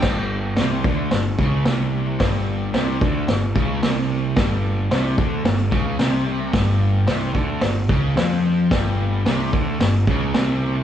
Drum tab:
CC |x-------|--------|--------|--------|
HH |--o-o-o-|o-o-o-o-|o-o-o-o-|o-o-o-o-|
SD |o-o-o-o-|o-o-o-o-|o-o-o-o-|o-o-o-o-|
BD |o--o-o--|o--o-o--|o--o-o--|o--o-o--|

CC |--------|
HH |o-o-o-o-|
SD |o-o-o-o-|
BD |o--o-o--|